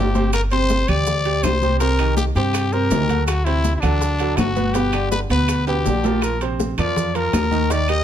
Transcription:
Already playing: G1 G4
0.14 C3 C4 C5, high bongo, high conga, low timbale, maracas
0.33 A#4, high bongo, high conga, high timbale, claves, maracas
0.51 C3 C4 C5, high bongo, high conga, high timbale, maracas
0.69 high bongo, high conga, low timbale, maracas
0.88 D2 G3 G4 D5, high conga, low conga, high timbale, claves, maracas
1.06 high bongo, high conga, low conga, maracas
1.25 G3 G4, high bongo, high conga, high timbale, maracas
1.43 C2 C5, high bongo, low bongo, high conga, high timbale, low timbale, claves, maracas
1.62 C3 C4 C5, high bongo, high conga, maracas
1.80 C3 C4 A#4 C5, high bongo, high conga, high timbale, maracas
1.99 D#3 D#4 G4, high bongo, high conga, high timbale, claves, maracas
2.17 G4, high bongo, high conga, low timbale, maracas
2.35 G2 C3 C4 G4 C5, high conga, high timbale, maracas
2.54 high bongo, high conga, high timbale, claves, maracas
2.72 C3 C4 A#4 C5, high bongo, high conga, maracas
2.91 D2 D#3 D#4 G4, high bongo, low bongo, high conga, high timbale, low timbale, maracas
3.09 F#3 F#4 A4, high bongo, high conga, high timbale, maracas
3.27 F#4, high bongo, high timbale, claves, maracas
3.45 C3 C4 E4 C5, high bongo, high conga, high timbale, maracas
3.64 high bongo, high conga, low timbale, maracas
3.76 E4
3.80 D2 F#3 D4 F#4 A4, high conga, low conga, high timbale, claves, maracas
4.01 high bongo, high conga, maracas
4.19 F#3 F#4 A4, high bongo, high conga, high timbale, maracas
4.37 G1 F#4, high bongo, low bongo, high conga, high timbale, low timbale, claves, maracas
4.56 B2 B3 B4, high bongo, high conga, maracas
4.74 B2 B3 G4 B4, high bongo, high conga, high timbale, maracas
4.93 D3 D4 G4, high bongo, high conga, high timbale, claves, maracas
5.12 B4, high bongo, high conga, low timbale, maracas
5.30 D2 B2 B3 B4, high conga, high timbale, maracas
5.48 high bongo, high conga, high timbale, claves, maracas
5.67 B2 B3 G4 B4, high bongo, high conga, high timbale, maracas
5.85 A#1 D3 D4 G4, high bongo, low bongo, high conga, low timbale, maracas
6.04 F3 F4 A#4, high bongo, high conga, low timbale, maracas
6.22 A#4, high bongo, high timbale, claves, maracas
6.41 C3 C4 C5, high bongo, high conga, high timbale, maracas
6.59 high bongo, high conga, low timbale, maracas
6.78 F2 F3 F4 A#4 D5, high conga, low conga, high timbale, claves, maracas
6.96 high bongo, high conga, low conga, maracas
7.15 F3 F4 A#4, high bongo, high conga, high timbale, maracas
7.33 D#2, high bongo, low bongo, high conga, high timbale, low timbale, claves, maracas
7.51 D#3 D#4 D#5, high bongo, high conga, maracas
7.70 D#3 D#4 D5 D#5, high bongo, high timbale, maracas
7.88 G3 G4 A#4 D#5, high bongo, high conga, high timbale, claves, maracas

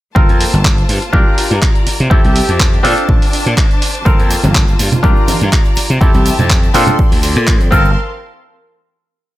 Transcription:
0.15 G1 A#3 C4 F4 A4 A#4 C5 A5, kick
0.29 F2, closed hi-hat
0.41 open hi-hat
0.54 G1, closed hi-hat
0.65 kick, clap
0.78 closed hi-hat
0.89 G2, open hi-hat
1.02 closed hi-hat
1.13 C2 D4 F4 G4 A#4 D5 A#5, kick
1.38 open hi-hat
1.51 G2, closed hi-hat
1.62 kick, clap
1.75 closed hi-hat
1.87 muted slap bass stroke, open hi-hat
2.00 C3, closed hi-hat
2.10 F2 C4 E4 G4 A4 E5 A5, kick
2.25 C2, closed hi-hat
2.36 open hi-hat
2.49 F2, closed hi-hat
2.60 kick, clap
2.73 closed hi-hat
2.83 A#2 C4 D4 F4 A4 C5, open hi-hat
2.98 closed hi-hat
3.09 A#1, kick
3.22 open hi-hat
3.33 open hi-hat
3.46 A#2, closed hi-hat
3.57 kick, clap
3.71 closed hi-hat
3.82 open hi-hat
3.95 closed hi-hat
4.05 G1 A#3 C4 F4 A4 A#4, kick, shaker
4.19 F2, closed hi-hat, shaker
4.30 open hi-hat, shaker
4.44 G1, closed hi-hat, high conga, shaker
4.54 kick, clap, shaker
4.68 closed hi-hat, shaker
4.79 G2, open hi-hat, shaker
4.92 closed hi-hat, low conga, shaker
5.03 C2 D4 F4 G4 A#4 D5 A#5, kick, shaker
5.16 shaker
5.28 open hi-hat, high conga, shaker
5.41 G2, closed hi-hat, shaker
5.52 kick, clap, shaker
5.65 closed hi-hat, shaker
5.76 muted slap bass stroke, open hi-hat, shaker
5.90 C3, closed hi-hat, shaker
6.01 F2 C4 E4 G4 A4 E5 A5, kick, shaker
6.14 C2, closed hi-hat, high conga, shaker
6.26 open hi-hat, shaker
6.39 F2, closed hi-hat, low conga, shaker
6.50 kick, clap, shaker
6.63 closed hi-hat, shaker
6.74 A#2 C4 D4 F4 A4 D5 C6, open hi-hat, shaker
6.87 closed hi-hat, low conga, shaker
6.99 kick, shaker
7.11 D2, open hi-hat, shaker
7.23 open hi-hat, shaker
7.36 A#2, closed hi-hat, shaker
7.47 kick, clap, shaker
7.60 F2, closed hi-hat, shaker
7.71 G1 C4 F4 A4 A#4 F5 A5 C6, kick, high conga, shaker
7.85 shaker

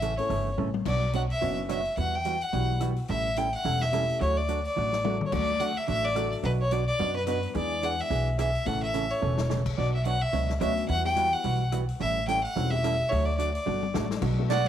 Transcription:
Already playing: A1 E5
0.02 C#3 E3 A3 C#4 A4, closed hi-hat
0.17 A3 C#4 E4 A4 C#5, open hi-hat
0.29 G1 C#3 E3 A3 C#4 A4, open hi-hat
0.57 A1 C#3 E3 A3 C#4 A4, high tom
0.74 high tom
0.86 B1 B2 F#3 B3 D4 F#4 C#5 D5, kick, crash
1.13 B2 F#3 B3 D4 F#4 C#5 F#5, closed hi-hat
1.30 E5, open hi-hat
1.41 F#1 B2 F#3 B3 C#4 D4 F#4 C#5, open hi-hat
1.69 B2 F#3 B3 D4 F#4 C#5 E5, cross-stick, closed hi-hat
1.85 open hi-hat
1.97 E2 E3 G3 B3 F#4 F#5, open hi-hat
2.15 G5
2.25 E3 G3 B3 F#4, closed hi-hat
2.41 F#5, open hi-hat
2.53 B1 E3 G3 B3 E4 F#4, open hi-hat
2.80 E3 G3 B3 F#4, cross-stick, closed hi-hat
2.96 open hi-hat
3.08 A1 E3 G3 C#4 E4 A4 E5, open hi-hat
3.36 E3 G3 C#4 E4 A4 G5, closed hi-hat
3.53 F#5, open hi-hat
3.65 E1 E3 G3 C#4 E4 A4, open hi-hat
3.81 E5, snare
3.92 E3 G3 A3 C#4 E4 G4 A4, cross-stick, closed hi-hat
4.09 open hi-hat
4.20 D2 D3 F#3 A3 D4 F#4 C#5, open hi-hat
4.37 D5
4.48 D3 F#3 A3 D4 F#4, closed hi-hat
4.65 D5, open hi-hat
4.76 A1 D3 F#3 A3 D4 F#4
4.93 snare
5.04 D3 F#3 A3 D4 F#4 A4, high tom
5.21 mid tom
5.26 C#5
5.32 D2 D3 F#3 A3 D4 F#4 D5, kick, crash
5.60 D3 F#3 A3 D4 F#4 F#5, closed hi-hat
5.77 E5
5.88 A1 D3 F#3 A3 D4 F#4 E5, open hi-hat
6.05 D5
6.15 D3 F#3 A3 D4 F#4 A4, cross-stick, closed hi-hat
6.32 open hi-hat
6.43 B1 B2 F#3 B3 D4 F#4 B4, open hi-hat
6.61 C#5
6.71 B2 F#3 B3 D4 F#4 D5, closed hi-hat
6.87 D5
6.99 F#2 B2 F#3 B3 D4 F#4, open hi-hat
7.16 B4
7.27 B2 F#3 B3 D4 F#4 B4, cross-stick, closed hi-hat
7.43 open hi-hat
7.54 E2 E3 G#3 B3 D4 E4 G#4 D5, open hi-hat
7.83 E3 B3 D4 G#4 F#5, closed hi-hat
7.99 E5, open hi-hat
8.10 B1 E3 B3 D4 G#4, open hi-hat
8.38 E3 B3 D4 G#4 E5, cross-stick, closed hi-hat
8.55 open hi-hat
8.65 A1 C#3 E3 A3 C#4 E4 A4 F#5, open hi-hat
8.83 E5
8.94 C#3 E3 A3 C#4 A4, closed hi-hat
9.10 C#5, open hi-hat
9.21 E1 C#3 E3 A3 C#4 A4
9.38 snare
9.49 C#3 E3 A3 C#4 A4, snare
9.66 kick, crash
9.78 B1 B2 F#3 B3 D4 F#4 C#5 D5
9.95 E5
10.05 B2 F#3 B3 D4 F#4 C#5 F#5, closed hi-hat
10.22 E5
10.33 C#2 B2 F#3 B3 D4 F#4 C#5, open hi-hat
10.49 snare
10.60 D2 B2 F#3 B3 C#4 D4 F#4 C#5 E5, cross-stick, closed hi-hat
10.77 open hi-hat
10.88 E2 E3 G3 B3 F#4 F#5, open hi-hat
11.04 G3 B3 E4 F#4 G4 G5
11.16 E3 G3 B3 F#4, closed hi-hat
11.33 F#5
11.44 B1 E3 G3 B3 F#4, open hi-hat
11.72 E3 G3 B3 F#4, cross-stick, closed hi-hat
11.88 open hi-hat
12.00 A1 E3 G3 C#4 E4 A4 E5, open hi-hat
12.28 E3 G3 C#4 E4 A4 G5, closed hi-hat
12.43 F#5, open hi-hat
12.56 E1 E3 F#3 G3 G#3 C4 C#4 D#4 E4 F#4 A4, open hi-hat
12.71 G3 A3 C#4 E4 G4 E5
12.84 E3 G3 C#4 E4 A4, cross-stick, closed hi-hat
13.09 D2 D3 F#3 A3 D4 F#4 C#5, open hi-hat
13.25 D5
13.37 D3 F#3 A3 D4 F#4 D5, closed hi-hat
13.54 D5, open hi-hat
13.66 G1 D3 F#3 A3 D4 F#4, high tom
13.83 high tom
13.94 A1 D3 F#3 A3 D4 F#4 A4, snare
14.11 snare
14.22 B1 B2 F#3 A3 D4 F#4, kick, crash
14.38 A3 B3 D4 F#4 A4
14.50 B2 F#3 A3 D4 F#4 D5 F#5, snare, hi-hat pedal, ride

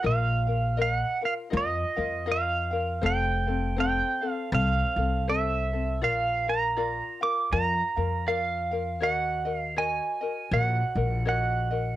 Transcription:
0.03 A#1 F4 A#4 D#5 F5
0.47 F4 A#4 F5
0.77 A#4 D#5
0.82 F5
0.94 F#5
1.21 F4 A#4 F5
1.25 F5
1.50 F2 F4 A#4 D#5 F5
1.57 D#5
1.96 F2 F4 A#4 F5
2.26 F4 A#4 D#5 F5
2.32 F5
2.71 F4 A#4 F5
3.02 F1 C4 A4 C5 F5
3.06 G5
3.47 C4 A4 F5
3.77 C4 A4 C5 F5 G5
4.21 C4 A4 F5
4.31 F5
4.52 C2 C4 A4 C5 F5
4.96 C2 C4 A4 F5
5.28 C4 A4 C5 E5
5.73 C4 A4
6.02 A#1 F4 A#4 D5 F5
6.47 F4 A#4 F5 A#5
6.77 F4 A#4 D5 F5
7.21 F4 A#4 F5 D6
7.52 F2 F4 A#4 D5 F5 A#5
7.96 F2 F4 A#4 F5
8.27 F4 A#4 D5 F5
8.71 F4 A#4 F5
9.00 D#2 F#4 A#4 C#5 D#5 F#5
9.45 F#4 A#4 D#5
9.56 F5
9.76 F#4 A#4 C#5 D#5 G#5
10.21 F#4 A#4 D#5
10.51 A#1 F#4 A#4 C#5 D#5 F#5
10.95 A#1 F#4 A#4 D#5
11.25 F#4 A#4 C#5 D#5 F#5
11.71 F#4 A#4 D#5

